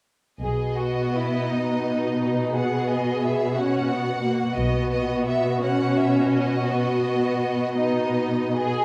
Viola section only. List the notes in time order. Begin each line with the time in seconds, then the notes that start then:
0.44 B3
2.54 B3
3.56 C#4
3.90 B3
4.23 A#3
4.57 B3
5.62 C#4
6.70 B3
7.79 B3